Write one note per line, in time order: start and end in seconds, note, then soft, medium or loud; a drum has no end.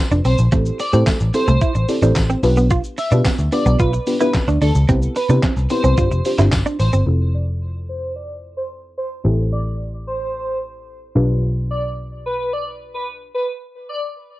0.00 0.34 C4 medium
0.00 0.34 E4 medium
0.00 0.34 F4 medium
0.00 0.34 A4 medium
0.00 0.34 B4 medium
0.12 0.20 F1 loud
0.12 0.22 D4 medium
0.12 shaker medium
0.25 0.34 B1 medium
0.25 0.35 C4 medium
0.25 0.37 C5 medium
0.25 open hi-hat medium
0.25 shaker medium
0.38 0.48 A#1 medium
0.38 shaker medium
0.52 0.70 A1 loud
0.52 0.63 A3 loud
0.52 0.82 C4 medium
0.52 0.82 E4 medium
0.52 0.82 G4 medium
0.52 0.82 A4 medium
0.52 0.82 C5 loud
0.52 kick loud
0.52 closed hi-hat medium
0.52 shaker medium
0.66 shaker medium
0.80 0.91 D5 medium
0.80 muted clean electric guitar stroke soft
0.80 open hi-hat medium
0.80 shaker medium
0.93 1.02 A2 loud
0.93 1.23 C4 medium
0.93 1.04 C4 medium
0.93 1.23 E4 medium
0.93 1.23 G4 medium
0.93 1.23 A4 medium
0.93 1.23 C5 medium
0.93 shaker medium
1.07 1.17 A3 medium
1.07 kick loud
1.07 snare loud
1.07 clap loud
1.07 closed hi-hat medium
1.07 tambourine medium
1.07 shaker medium
1.20 1.29 A1 medium
1.20 shaker medium
1.34 1.74 C4 medium
1.34 1.74 E4 medium
1.34 1.74 G4 medium
1.34 1.74 A4 medium
1.34 1.85 C5 medium
1.34 1.74 C5 medium
1.34 muted clean electric guitar stroke soft
1.34 open hi-hat medium
1.34 shaker medium
1.48 1.57 C2 loud
1.48 1.58 A3 medium
1.48 shaker medium
1.61 1.72 E4 medium
1.61 kick loud
1.61 closed hi-hat medium
1.61 shaker medium
1.75 1.84 A1 loud
1.75 muted clean electric guitar stroke soft
1.75 shaker medium
1.89 1.99 C4 medium
1.89 1.99 E4 medium
1.89 1.99 G4 medium
1.89 1.99 A4 medium
1.89 1.99 D5 medium
1.89 open hi-hat medium
1.89 shaker medium
2.02 2.11 A1 medium
2.02 2.43 C4 medium
2.02 2.13 D4 medium
2.02 2.43 E4 medium
2.02 2.42 G4 medium
2.02 2.43 A4 medium
2.02 2.43 C5 loud
2.02 shaker medium
2.16 2.34 A1 loud
2.16 kick loud
2.16 snare loud
2.16 clap loud
2.16 closed hi-hat medium
2.16 tambourine medium
2.16 shaker medium
2.30 2.40 C4 medium
2.30 shaker medium
2.43 2.78 B1 loud
2.43 2.98 B3 loud
2.43 2.98 D4 loud
2.43 2.98 F4 medium
2.43 2.98 G4 medium
2.43 2.98 B4 loud
2.43 muted clean electric guitar stroke soft
2.43 open hi-hat medium
2.43 shaker medium
2.57 2.67 B3 medium
2.57 shaker medium
2.70 2.81 F4 loud
2.70 kick loud
2.70 closed hi-hat medium
2.70 shaker medium
2.84 shaker medium
2.98 3.10 E5 medium
2.98 muted clean electric guitar stroke soft
2.98 open hi-hat medium
2.98 shaker medium
3.11 3.20 B2 loud
3.11 3.41 B3 medium
3.11 3.41 D4 medium
3.11 3.22 D4 medium
3.11 3.41 F4 medium
3.11 3.42 G4 medium
3.11 3.42 B4 medium
3.11 shaker medium
3.25 3.35 B3 medium
3.25 kick loud
3.25 snare loud
3.25 clap loud
3.25 closed hi-hat medium
3.25 tambourine medium
3.25 shaker medium
3.39 3.47 D2 medium
3.39 shaker medium
3.52 3.92 B3 medium
3.52 3.92 D4 medium
3.52 3.92 F4 medium
3.52 3.92 G4 medium
3.52 3.92 B4 medium
3.52 3.76 D5 medium
3.52 muted clean electric guitar stroke soft
3.52 open hi-hat medium
3.52 shaker medium
3.66 3.75 B1 loud
3.66 3.76 B3 medium
3.66 shaker medium
3.80 3.97 B1 loud
3.80 3.90 F4 medium
3.80 3.91 B4 medium
3.80 kick loud
3.80 closed hi-hat medium
3.80 shaker medium
3.93 muted clean electric guitar stroke soft
3.93 shaker medium
4.07 4.17 B3 medium
4.07 4.17 D4 medium
4.07 4.17 F4 medium
4.07 4.17 G4 medium
4.07 4.17 B4 medium
4.07 open hi-hat medium
4.07 shaker medium
4.20 4.71 B3 medium
4.20 4.71 D4 medium
4.20 4.31 E4 medium
4.20 4.71 F4 medium
4.20 4.71 G4 medium
4.20 4.32 B4 medium
4.20 4.71 B4 medium
4.20 shaker medium
4.34 muted clean electric guitar stroke soft
4.34 kick loud
4.34 snare loud
4.34 clap loud
4.34 closed hi-hat medium
4.34 tambourine medium
4.34 shaker medium
4.48 4.57 D2 medium
4.48 4.58 D4 medium
4.48 shaker medium
4.61 4.70 D2 medium
4.61 4.72 D4 medium
4.61 4.73 A4 medium
4.61 open hi-hat medium
4.61 shaker medium
4.75 4.84 C#2 loud
4.75 shaker medium
4.89 5.06 C2 loud
4.89 5.19 B3 loud
4.89 4.99 C4 loud
4.89 5.19 C4 medium
4.89 5.19 E4 medium
4.89 5.19 G4 medium
4.89 5.19 B4 loud
4.89 kick loud
4.89 closed hi-hat medium
4.89 shaker medium
5.02 shaker medium
5.16 5.28 B4 medium
5.16 muted clean electric guitar stroke soft
5.16 open hi-hat medium
5.16 shaker medium
5.29 5.38 C3 loud
5.29 5.60 B3 medium
5.29 5.60 C4 medium
5.29 5.40 D4 medium
5.29 5.60 E4 medium
5.29 5.60 G4 medium
5.29 5.60 B4 medium
5.29 shaker medium
5.43 5.53 C4 medium
5.43 kick loud
5.43 snare loud
5.43 clap loud
5.43 closed hi-hat medium
5.43 tambourine medium
5.43 shaker medium
5.57 5.66 C2 medium
5.57 shaker medium
5.70 5.98 B3 medium
5.70 5.97 C4 medium
5.70 5.98 E4 medium
5.70 5.97 G4 medium
5.70 5.98 B4 medium
5.70 6.22 C5 medium
5.70 muted clean electric guitar stroke soft
5.70 open hi-hat medium
5.70 shaker medium
5.84 5.93 C2 loud
5.84 5.94 C4 medium
5.84 shaker medium
5.98 6.06 G1 loud
5.98 6.20 C4 medium
5.98 6.20 D4 medium
5.98 6.08 F4 medium
5.98 6.20 F4 medium
5.98 6.20 G4 medium
5.98 6.20 C5 medium
5.98 kick loud
5.98 closed hi-hat medium
5.98 shaker medium
6.11 6.20 F1 medium
6.11 muted clean electric guitar stroke soft
6.11 shaker medium
6.25 6.35 C4 medium
6.25 6.35 D4 medium
6.25 6.35 F4 medium
6.25 6.35 G4 medium
6.25 6.35 C5 medium
6.25 open hi-hat medium
6.25 shaker medium
6.39 6.47 G1 medium
6.39 6.89 C4 loud
6.39 6.89 D4 medium
6.39 6.49 E4 medium
6.39 6.89 F4 medium
6.39 6.89 G4 medium
6.39 6.89 C5 loud
6.39 clap medium
6.39 shaker medium
6.52 6.61 G1 loud
6.52 kick loud
6.52 snare loud
6.52 clap loud
6.52 closed hi-hat medium
6.52 tambourine medium
6.52 shaker medium
6.66 6.76 D4 medium
6.66 shaker soft
6.79 6.88 A1 medium
6.79 6.91 C5 medium
6.79 muted clean electric guitar stroke soft
6.79 open hi-hat medium
6.79 shaker medium
6.93 7.02 G1 medium
6.93 7.03 C4 medium
6.93 shaker medium
7.06 9.21 F1 medium
7.06 9.21 C4 medium
7.06 9.21 E4 medium
7.06 9.21 F4 medium
7.06 9.21 A4 medium
7.34 7.46 D5 medium
7.89 8.12 C5 medium
8.16 8.28 D5 medium
8.57 8.69 C5 medium
8.98 9.09 C5 medium
9.24 11.12 A1 medium
9.24 11.12 C4 medium
9.24 11.12 E4 medium
9.24 11.12 G4 medium
9.24 11.12 A4 medium
9.52 9.64 D5 medium
10.07 10.58 C5 medium
11.15 13.30 B1 medium
11.15 13.30 D4 medium
11.15 13.30 F4 medium
11.15 13.30 G4 medium
11.15 13.30 B4 medium
11.71 11.82 D5 medium
12.26 12.49 B4 medium
12.53 12.64 D5 medium
12.94 13.05 B4 medium
13.34 13.46 B4 medium
13.89 14.01 D5 medium